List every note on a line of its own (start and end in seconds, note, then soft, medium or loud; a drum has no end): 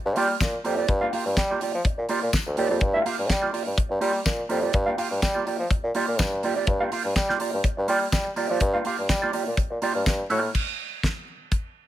0.06 0.18 G2 loud
0.06 muted clean electric guitar stroke soft
0.16 0.34 G3 loud
0.16 0.35 A#3 loud
0.16 0.30 F4 loud
0.16 0.29 G4 loud
0.16 0.29 D5 loud
0.16 open hi-hat medium
0.30 muted clean electric guitar stroke medium
0.41 0.58 A#2 medium
0.41 muted clean electric guitar stroke soft
0.41 kick loud
0.41 snare loud
0.41 closed hi-hat medium
0.41 tambourine loud
0.53 muted clean electric guitar stroke soft
0.64 0.82 F2 medium
0.64 0.77 A#3 medium
0.64 0.77 F4 medium
0.64 0.77 G4 medium
0.64 0.76 D5 medium
0.64 open hi-hat medium
0.77 0.88 A#3 soft
0.77 0.88 F4 medium
0.77 0.88 G4 medium
0.77 0.89 D5 medium
0.88 1.06 G2 loud
0.88 muted clean electric guitar stroke soft
0.88 kick loud
0.88 closed hi-hat medium
1.01 1.12 A#3 medium
1.01 1.12 F4 medium
1.01 1.13 G4 medium
1.01 1.13 F5 medium
1.13 1.28 A#3 medium
1.13 1.26 F4 medium
1.13 1.25 G4 medium
1.13 1.26 F5 medium
1.13 open hi-hat medium
1.26 1.34 G2 loud
1.26 muted clean electric guitar stroke soft
1.37 1.54 G3 loud
1.37 muted clean electric guitar stroke soft
1.37 kick loud
1.37 snare loud
1.37 closed hi-hat medium
1.37 tambourine medium
1.50 1.60 A#3 medium
1.50 1.61 F4 medium
1.50 1.62 G4 medium
1.50 1.62 D5 medium
1.61 1.76 A#3 medium
1.61 1.74 F4 medium
1.61 1.74 G4 medium
1.61 1.73 D5 medium
1.61 open hi-hat medium
1.74 1.82 F3 medium
1.74 muted clean electric guitar stroke soft
1.85 muted clean electric guitar stroke soft
1.85 kick loud
1.85 closed hi-hat medium
1.98 2.06 A#2 medium
1.98 muted clean electric guitar stroke soft
2.09 2.28 A#3 medium
2.09 2.22 F4 medium
2.09 2.21 G4 loud
2.09 2.20 D5 loud
2.09 open hi-hat medium
2.22 2.30 A#2 medium
2.22 muted clean electric guitar stroke medium
2.33 muted clean electric guitar stroke soft
2.33 kick loud
2.33 snare loud
2.33 closed hi-hat medium
2.33 tambourine loud
2.46 2.54 D2 medium
2.46 muted clean electric guitar stroke soft
2.57 2.67 D#2 medium
2.57 2.71 A#3 medium
2.57 2.70 F4 medium
2.57 2.70 G4 medium
2.57 2.69 D5 medium
2.57 open hi-hat medium
2.71 2.83 F2 loud
2.71 2.81 A#3 medium
2.71 2.81 F4 medium
2.71 2.82 G4 medium
2.71 2.82 D5 medium
2.81 2.99 G2 loud
2.81 kick loud
2.81 closed hi-hat medium
2.94 3.04 A#3 medium
2.94 3.05 F4 medium
2.94 3.05 G4 medium
2.94 3.05 F5 medium
3.05 3.20 A#3 medium
3.05 3.18 F4 medium
3.05 3.17 G4 medium
3.05 3.18 F5 medium
3.05 open hi-hat medium
3.18 3.31 G2 loud
3.18 muted clean electric guitar stroke soft
3.29 3.47 G3 loud
3.29 muted clean electric guitar stroke soft
3.29 kick loud
3.29 snare loud
3.29 closed hi-hat medium
3.29 tambourine medium
3.42 3.51 A#3 medium
3.42 3.52 F4 medium
3.42 3.52 G4 medium
3.42 3.53 D5 medium
3.53 3.68 A#3 medium
3.53 3.65 F4 medium
3.53 3.64 G4 medium
3.53 3.64 D5 medium
3.53 open hi-hat medium
3.65 3.75 G2 medium
3.65 muted clean electric guitar stroke soft
3.77 muted clean electric guitar stroke soft
3.77 kick loud
3.77 closed hi-hat medium
3.89 3.99 G2 loud
3.89 muted clean electric guitar stroke soft
4.00 4.19 G3 loud
4.00 4.20 A#3 medium
4.00 4.13 F4 medium
4.00 4.13 G4 loud
4.00 4.13 D5 medium
4.00 open hi-hat medium
4.14 muted clean electric guitar stroke medium
4.25 4.43 A#2 medium
4.25 muted clean electric guitar stroke soft
4.25 kick loud
4.25 snare loud
4.25 closed hi-hat medium
4.25 tambourine loud
4.38 muted clean electric guitar stroke soft
4.49 4.68 F2 medium
4.49 4.62 A#3 medium
4.49 4.62 F4 medium
4.49 4.61 G4 medium
4.49 4.61 D5 medium
4.49 open hi-hat medium
4.62 4.73 A#3 soft
4.62 4.73 F4 medium
4.62 4.74 G4 medium
4.62 4.74 D5 medium
4.73 4.92 G2 loud
4.73 muted clean electric guitar stroke soft
4.73 kick loud
4.73 closed hi-hat medium
4.86 4.96 A#3 medium
4.86 4.97 F4 medium
4.86 4.97 G4 medium
4.86 4.98 F5 medium
4.97 5.13 A#3 medium
4.97 5.10 F4 medium
4.97 5.10 G4 medium
4.97 5.10 F5 medium
4.97 open hi-hat medium
5.11 5.19 G2 medium
5.11 muted clean electric guitar stroke soft
5.22 5.40 G3 loud
5.22 muted clean electric guitar stroke soft
5.22 kick loud
5.22 snare loud
5.22 closed hi-hat medium
5.22 tambourine medium
5.34 5.45 A#3 medium
5.34 5.46 F4 medium
5.34 5.46 G4 medium
5.34 5.47 D5 medium
5.47 5.62 A#3 medium
5.47 5.59 F4 medium
5.47 5.58 G4 medium
5.47 5.58 D5 medium
5.47 open hi-hat medium
5.59 5.67 F3 medium
5.59 muted clean electric guitar stroke soft
5.70 muted clean electric guitar stroke soft
5.70 kick loud
5.70 closed hi-hat medium
5.83 5.92 A#2 medium
5.83 muted clean electric guitar stroke soft
5.95 6.14 A#3 loud
5.95 6.07 F4 loud
5.95 6.07 G4 loud
5.95 6.06 D5 loud
5.95 open hi-hat medium
6.08 6.21 A#2 medium
6.08 muted clean electric guitar stroke soft
6.19 6.43 G2 medium
6.19 muted clean electric guitar stroke soft
6.19 kick loud
6.19 snare loud
6.19 closed hi-hat medium
6.19 tambourine loud
6.32 muted clean electric guitar stroke soft
6.43 6.56 A#3 loud
6.43 6.56 F4 loud
6.43 6.55 G4 loud
6.43 6.55 D5 medium
6.43 open hi-hat medium
6.56 6.66 A#3 medium
6.56 6.67 F4 medium
6.56 6.67 G4 medium
6.56 6.67 D5 medium
6.67 6.85 G2 loud
6.67 muted clean electric guitar stroke soft
6.67 kick loud
6.67 closed hi-hat medium
6.80 6.90 A#3 medium
6.80 6.91 F4 medium
6.80 6.92 G4 medium
6.80 6.92 F5 medium
6.92 7.07 A#3 medium
6.92 7.05 F4 medium
6.92 7.04 G4 medium
6.92 7.04 F5 medium
6.92 open hi-hat medium
7.05 7.13 G2 medium
7.05 muted clean electric guitar stroke medium
7.16 7.33 G3 loud
7.16 muted clean electric guitar stroke soft
7.16 kick loud
7.16 snare loud
7.16 closed hi-hat medium
7.16 tambourine medium
7.29 7.39 A#3 medium
7.29 7.39 F4 medium
7.29 7.40 G4 medium
7.29 7.40 D5 medium
7.29 snare soft
7.40 7.55 A#3 medium
7.40 7.53 F4 medium
7.40 7.52 G4 medium
7.40 7.52 D5 medium
7.40 open hi-hat medium
7.53 7.61 G2 medium
7.53 muted clean electric guitar stroke medium
7.64 muted clean electric guitar stroke soft
7.64 kick loud
7.64 closed hi-hat medium
7.77 7.86 G2 loud
7.77 muted clean electric guitar stroke soft
7.88 8.06 G3 loud
7.88 8.07 A#3 medium
7.88 8.01 F4 medium
7.88 8.00 G4 medium
7.88 8.00 D5 loud
7.88 open hi-hat medium
8.01 muted clean electric guitar stroke soft
8.12 8.30 G3 medium
8.12 muted clean electric guitar stroke soft
8.12 kick loud
8.12 snare loud
8.12 closed hi-hat medium
8.12 tambourine loud
8.25 muted clean electric guitar stroke soft
8.36 8.50 A#3 medium
8.36 8.50 F4 medium
8.36 8.49 G4 medium
8.36 8.48 D5 medium
8.36 open hi-hat medium
8.50 8.58 F3 medium
8.50 8.60 A#3 medium
8.50 8.61 F4 medium
8.50 8.61 G4 medium
8.50 8.61 D5 medium
8.60 8.78 G2 loud
8.60 muted clean electric guitar stroke soft
8.60 kick loud
8.60 closed hi-hat medium
8.73 8.84 A#3 medium
8.73 8.85 F4 medium
8.73 8.85 G4 medium
8.73 8.86 F5 medium
8.85 9.00 A#3 medium
8.85 8.98 F4 medium
8.85 8.98 G4 medium
8.85 8.98 F5 medium
8.85 open hi-hat medium
8.98 9.07 G2 medium
8.98 muted clean electric guitar stroke medium
9.09 9.27 G3 loud
9.09 muted clean electric guitar stroke soft
9.09 kick loud
9.09 snare loud
9.09 closed hi-hat medium
9.09 tambourine medium
9.22 9.32 A#3 medium
9.22 9.32 F4 medium
9.22 9.33 G4 medium
9.22 9.33 D5 medium
9.33 9.48 A#3 medium
9.33 9.46 F4 medium
9.33 9.46 G4 medium
9.33 9.45 D5 medium
9.33 open hi-hat medium
9.46 9.55 A#2 medium
9.46 muted clean electric guitar stroke soft
9.57 muted clean electric guitar stroke soft
9.57 kick loud
9.57 closed hi-hat medium
9.70 9.79 A#2 medium
9.70 muted clean electric guitar stroke soft
9.82 10.01 A#3 medium
9.82 9.95 F4 loud
9.82 9.94 G4 medium
9.82 9.94 D5 loud
9.82 open hi-hat medium
9.95 10.03 G2 medium
9.95 muted clean electric guitar stroke soft
10.06 10.24 G2 medium
10.06 kick loud
10.06 snare loud
10.06 closed hi-hat medium
10.06 tambourine medium
10.19 muted clean electric guitar stroke soft
10.30 10.48 A2 medium
10.30 10.50 A#3 medium
10.30 10.42 F4 medium
10.30 10.42 G4 medium
10.30 10.41 D5 medium
10.30 open hi-hat medium
10.42 muted clean electric guitar stroke medium
10.55 kick medium
10.55 crash medium
11.03 kick loud
11.03 snare loud
11.03 closed hi-hat soft
11.52 kick loud
11.52 closed hi-hat medium